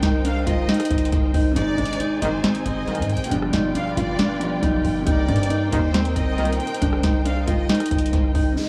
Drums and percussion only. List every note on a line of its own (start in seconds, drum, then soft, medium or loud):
0.03 kick medium
0.03 snare loud
0.03 closed hi-hat medium
0.25 closed hi-hat medium
0.47 kick loud
0.47 closed hi-hat medium
0.69 snare loud
0.69 closed hi-hat soft
0.74 closed hi-hat medium
0.80 cross-stick medium
0.80 closed hi-hat medium
0.85 closed hi-hat medium
0.91 kick loud
0.91 closed hi-hat medium
0.98 closed hi-hat medium
1.05 closed hi-hat medium
1.12 kick loud
1.12 closed hi-hat medium
1.34 kick medium
1.34 open hi-hat medium
1.56 kick loud
1.56 closed hi-hat medium
1.78 kick medium
1.78 closed hi-hat soft
1.85 closed hi-hat medium
1.93 closed hi-hat medium
2.00 closed hi-hat medium
2.22 kick loud
2.22 closed hi-hat medium
2.44 snare loud
2.44 closed hi-hat medium
2.55 closed hi-hat medium
2.66 kick loud
2.66 closed hi-hat medium
2.88 closed hi-hat soft
2.95 closed hi-hat medium
3.02 closed hi-hat medium
3.09 closed hi-hat soft
3.17 closed hi-hat medium
3.24 closed hi-hat medium
3.31 kick loud
3.31 closed hi-hat medium
3.42 cross-stick medium
3.53 kick medium
3.53 snare loud
3.53 closed hi-hat medium
3.75 closed hi-hat medium
3.97 kick loud
3.97 closed hi-hat medium
4.19 snare loud
4.19 closed hi-hat medium
4.41 closed hi-hat medium
4.63 kick loud
4.63 closed hi-hat medium
4.85 kick loud
4.85 open hi-hat medium
5.07 kick loud
5.07 closed hi-hat medium
5.28 kick medium
5.28 closed hi-hat soft
5.36 closed hi-hat medium
5.43 closed hi-hat medium
5.50 closed hi-hat medium
5.72 kick loud
5.72 closed hi-hat medium
5.94 snare loud
5.94 closed hi-hat medium
6.05 closed hi-hat medium
6.16 kick loud
6.16 closed hi-hat medium
6.38 closed hi-hat soft
6.45 closed hi-hat medium
6.53 closed hi-hat medium
6.60 closed hi-hat soft
6.67 closed hi-hat medium
6.74 closed hi-hat medium
6.82 kick loud
6.82 closed hi-hat medium
6.93 cross-stick medium
7.03 kick medium
7.03 snare loud
7.03 closed hi-hat medium
7.25 closed hi-hat medium
7.48 kick medium
7.48 closed hi-hat medium
7.69 snare loud
7.69 closed hi-hat soft
7.75 closed hi-hat medium
7.80 cross-stick medium
7.80 closed hi-hat medium
7.86 closed hi-hat medium
7.91 kick loud
7.91 closed hi-hat medium
7.98 closed hi-hat medium
8.06 closed hi-hat medium
8.13 kick loud
8.13 closed hi-hat medium
8.35 kick medium
8.35 open hi-hat medium